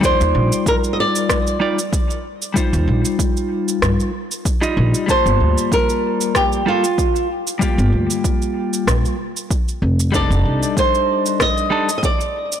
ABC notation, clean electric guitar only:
X:1
M:4/4
L:1/16
Q:"Swing 16ths" 1/4=95
K:Gm
V:1 name="Clean electric guitar"
[G,EFd]8- [G,EFd]2 [G,EFd] z4 z | [G,EFc]8- [G,EFc]2 z3 [G,EFe]3 | [G,B,Fa]8- [G,B,Fa]2 [G,B,FA] z4 z | [G,B,FG]8- [G,B,FG]2 z6 |
[G,DEA]8- [G,DEA]2 [G,DEA] z4 z |]